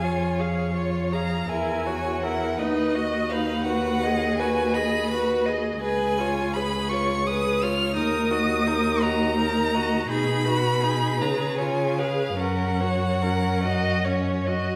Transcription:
Already playing: cello F2, violin G#5
0.01 viola F4, violin C#5
0.38 viola G#4, violin C#5 F5
0.75 viola F4, violin C#5
1.12 viola G#4, violin F5 A#5
1.49 cello E2, viola E4, violin A#4 G#5
1.86 viola F#4, violin C#5
2.22 viola E4, violin A#4 F#5
2.58 cello D#2, viola D#4, violin B4 D#5
2.94 viola F#4, violin D#5
3.29 viola D#4, violin B4 F5
3.65 viola F#4, violin B4 F#5
4.04 viola G#4, violin D#5
4.38 viola F#4, violin B4 G#5
4.74 viola G#4, violin D#5 B5
5.11 viola F#4, violin B4
5.46 viola G#4, violin D#5
5.81 cello C#2, viola G#4, violin B4 G#5
6.18 viola F4, violin C#5
6.54 viola G#4, violin B4 B5
6.89 viola F4, violin C#6
6.93 violin C#5
7.26 viola G#4, violin B4 D#6
7.62 viola F4, violin C#5 F6
7.95 cello D#2, viola D#4, violin A#4 D#6
8.30 viola F#4, violin D#5
8.66 viola D#4, violin A#4
9.02 viola F#4, violin D#5 A#5
9.37 viola D#4, violin A#4
9.74 viola F#4, violin D#5
10.08 cello B2, viola D#4, violin G#4 B5
10.45 viola F#4, violin B4
10.81 viola D#4, violin G#4
11.20 cello C#3, viola G#4, violin B4 A#5
11.58 viola F4, violin C#5 G#5
11.98 viola G#4, violin B4 F5
12.38 cello F#2, viola C#4, violin A#4 F#5
12.80 viola F#4, violin C#5
13.22 viola C#4, violin A#4
13.63 viola F#4, violin D#5
14.05 viola C#4, violin C#5
14.47 viola F#4, violin D#5

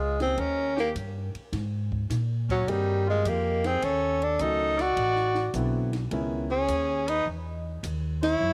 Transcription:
Already playing: upright bass C#2, tenor saxophone G#3, trumpet F4
0.20 grand piano D#3 A#3 C#4 G4, tenor saxophone C4, trumpet G#4, snare, ride
0.38 upright bass D#2, tenor saxophone C#4, trumpet A#4, kick, ride
0.76 tenor saxophone A#3, trumpet G4, snare
0.95 upright bass G2, kick, hi-hat pedal, ride
1.34 muted upright bass stroke, ride
1.53 upright bass G#2, kick, snare, ride
1.92 kick
2.10 upright bass A#2, kick, snare, hi-hat pedal, ride
2.49 tenor saxophone F#3, trumpet C#4, kick, ride
2.67 upright bass G2, grand piano D#3 A#3 C4 G4 G#4, tenor saxophone G3, trumpet D#4, kick, ride
3.07 tenor saxophone G#3, trumpet F4
3.25 upright bass F2, tenor saxophone A#3, trumpet G4, kick, hi-hat pedal, ride
3.64 tenor saxophone C4, trumpet G#4, snare, ride
3.82 upright bass D#2, tenor saxophone C#4, trumpet A4, kick, ride
4.21 tenor saxophone D4, trumpet A4, ride
4.39 upright bass C#2, grand piano D#3 F#3 A3 C#4 F#4, tenor saxophone D#4, trumpet A4, kick, hi-hat pedal, ride
4.78 tenor saxophone F#4, trumpet D5, snare, ride
4.96 upright bass A1, kick, ride
5.16 snare
5.35 snare
5.54 upright bass B1, grand piano D3 F#3 B3 C4 E4, kick, hi-hat pedal, ride
5.93 snare, ride
6.11 upright bass C#2, grand piano D#3 G#3 B3 C#4 E4, kick, ride
6.51 tenor saxophone C#4, trumpet G#4
6.68 upright bass D#2, kick, hi-hat pedal, ride
7.08 tenor saxophone D#4, trumpet B4, ride
7.26 upright bass E2, kick
7.83 upright bass D#2, kick, hi-hat pedal, ride
8.22 tenor saxophone E4, trumpet C#5, snare, ride
8.40 upright bass F#2

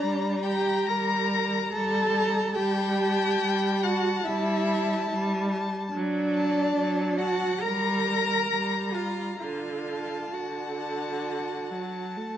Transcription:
Already playing: cello D4, violin D5 A#5
0.00 viola G3
0.43 cello G4, violin G5 A#5
0.86 viola G3, cello A#4, violin A#5
1.31 violin A#5
1.73 viola G3, cello A4, violin A5
2.14 violin A#5
2.54 viola G3, cello G4, violin G5 A5
2.98 violin A5
3.41 viola G3
3.83 cello F#4, violin F#5 A5
4.24 viola G3, cello E4, violin E5
4.67 violin A5
5.10 viola G3
5.51 violin A5
5.92 viola F#3, cello D4, violin D5
6.34 violin A5
6.76 viola F#3
7.18 cello F#4, violin F#5 A5
7.60 viola G3, cello A#4, violin A#5
8.05 violin A#5
8.50 viola G3
8.93 cello F4, violin F5 A#5
9.39 viola D3, cello F4, violin F5
9.87 violin A5
10.32 viola D3, cello F#4, violin F#5
10.77 violin A5
11.71 viola F#3, violin A5
12.17 viola A3

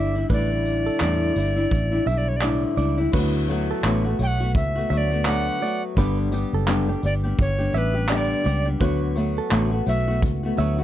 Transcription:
Already playing: fingered electric bass G1, nylon-string guitar D3 G3 D4 E4, clean electric guitar D5, recorder E5
0.15 nylon-string guitar G3 D4 E4
0.29 fingered electric bass A1, nylon-string guitar A2 D3 G3 D4 E4, clean electric guitar B4, recorder D5, kick
0.65 tambourine
0.86 clean electric guitar A4
1.00 fingered electric bass E2, nylon-string guitar A2 D3 G3 D4 E4, clap
1.35 fingered electric bass G1, nylon-string guitar D3 G3 D4 E4, tambourine
1.56 nylon-string guitar G3 D4 E4
1.71 fingered electric bass A1, kick
1.92 nylon-string guitar G3 D4 E4
2.05 fingered electric bass B1, nylon-string guitar D3 G3 D4 E4, recorder E5, clean electric guitar E5, tambourine
2.18 recorder D5
2.28 recorder C#5
2.36 recorder D5
2.41 nylon-string guitar A2 D3 G3 D4 E4, clean electric guitar D5, clap
2.76 fingered electric bass C#2, nylon-string guitar D3 G3 D4 E4, clean electric guitar D5, tambourine
2.98 nylon-string guitar G3 D4 E4
3.12 fingered electric bass D2, nylon-string guitar D3 F#3 A3 B3 F#4, clean electric guitar B4, kick, crash
3.48 nylon-string guitar F#3 A3 B3 F#4, tambourine
3.71 clean electric guitar A4
3.83 fingered electric bass A1, nylon-string guitar D3 F#3 A3 B3 F#4, clap
4.04 nylon-string guitar A3 B3 F#4
4.19 fingered electric bass B1, nylon-string guitar F#3 A3 B3 F#4, tambourine
4.23 recorder G5
4.27 recorder F#5
4.40 nylon-string guitar A3 B3 F#4
4.55 fingered electric bass C#2, recorder E5, kick
4.75 nylon-string guitar A3 B3 F#4
4.90 fingered electric bass D2, nylon-string guitar F#3 A3 B3 F#4, clean electric guitar E5, recorder E5, tambourine
4.97 recorder D5
5.11 nylon-string guitar A3 B3 F#4
5.25 nylon-string guitar D3 F#3 A3 B3 F#4, clean electric guitar D5, recorder F#5, clap
5.61 nylon-string guitar F#3 A3 B3 F#4, clean electric guitar D5, tambourine
5.96 fingered electric bass G1, nylon-string guitar G2 D3 G3 B3 D4 G4, clean electric guitar B4, kick
6.31 nylon-string guitar G3 B3 D4 G4, tambourine
6.53 fingered electric bass F#1, clean electric guitar A4
6.67 nylon-string guitar G2 D3 G3 B3 D4 G4, clap
6.89 nylon-string guitar G3 B3 D4 G4
7.02 fingered electric bass G1, nylon-string guitar G3 B3 D4 G4, recorder D5, tambourine
7.24 nylon-string guitar G3 B3 D4 G4
7.39 fingered electric bass G1, recorder C#5, kick
7.58 nylon-string guitar G3 B3 D4 G4
7.73 fingered electric bass A1, nylon-string guitar G3 B3 D4 G4, clean electric guitar E5, tambourine
7.78 recorder B4
7.94 nylon-string guitar G3 B3 D4 G4
8.09 nylon-string guitar G2 D3 G3 B3 D4 G4, clean electric guitar D5, recorder E5, clap
8.17 recorder D5
8.44 fingered electric bass C#2, nylon-string guitar G3 B3 D4 G4, clean electric guitar D5, tambourine
8.65 nylon-string guitar G3 B3 D4 G4
8.80 fingered electric bass D2, nylon-string guitar D3 F#3 A3 B3 F#4, clean electric guitar B4, kick
9.15 nylon-string guitar F#3 A3 B3 F#4, tambourine
9.38 clean electric guitar A4
9.50 fingered electric bass A1, nylon-string guitar D3 F#3 A3 B3 F#4, clap
9.71 nylon-string guitar A3 B3 F#4
9.86 fingered electric bass B1, nylon-string guitar F#3 A3 B3 F#4, recorder E5, tambourine
10.08 nylon-string guitar A3 B3 F#4
10.22 fingered electric bass C#2, kick
10.43 nylon-string guitar A3 B3 F#4
10.57 fingered electric bass D2, nylon-string guitar F#3 A3 B3 F#4, clean electric guitar E5, tambourine
10.79 nylon-string guitar B3 F#4

